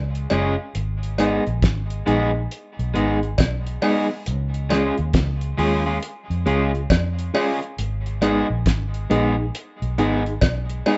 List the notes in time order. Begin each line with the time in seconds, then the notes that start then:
Already playing: C#2
0.15 closed hi-hat
0.30 F#1 G#3 C#4 F4 G#4, closed hi-hat, cowbell
0.75 G#1, closed hi-hat
1.03 closed hi-hat
1.18 G#3 B3 D#4 G#4, closed hi-hat, cowbell
1.47 A#1, closed hi-hat
1.62 G#1, kick, snare, closed hi-hat
1.90 closed hi-hat
2.06 A#1 G#3 B3 D#4 G#4, closed hi-hat
2.35 D#4 G#4
2.51 closed hi-hat
2.79 B1, closed hi-hat
2.94 G#1 G#3 B3 D#4 G#4, closed hi-hat
3.23 closed hi-hat
3.38 B1, kick, snare, closed hi-hat, cowbell
3.67 closed hi-hat
3.82 G#3 B3 D#4 G#4, open hi-hat, cowbell
4.09 muted clean electric guitar stroke
4.26 C#2, closed hi-hat
4.54 closed hi-hat
4.69 G#3 C#4 F4 G#4, snare, closed hi-hat, cowbell
4.98 D#2, closed hi-hat
5.13 C#2, kick, snare, closed hi-hat
5.41 closed hi-hat
5.58 D#2 G#3 C#4 F4 G#4, open hi-hat
5.86 G#3 C#4 F4 G#4
6.03 closed hi-hat
6.30 F2, closed hi-hat
6.46 C#2 G#3 C#4 F4 G#4, closed hi-hat
6.74 F4 G#4, closed hi-hat
6.90 F2, kick, snare, closed hi-hat, cowbell
7.19 closed hi-hat
7.34 G#3 C#4 F4 G#4, open hi-hat, cowbell
7.62 closed hi-hat
7.78 G#1, closed hi-hat
8.06 closed hi-hat
8.22 G#3 B3 D#4 G#4, closed hi-hat, cowbell
8.50 A#1
8.66 G#1, kick, snare, closed hi-hat
8.94 closed hi-hat
9.10 A#1 G#3 B3 D#4 G#4, closed hi-hat
9.38 D#4 G#4
9.55 closed hi-hat
9.82 B1, closed hi-hat
9.98 G#1 G#3 B3 D#4 G#4, closed hi-hat
10.26 D#4 G#4, closed hi-hat
10.41 B1, kick, snare, closed hi-hat, cowbell
10.70 closed hi-hat
10.86 G#3 B3 D#4 G#4, open hi-hat, cowbell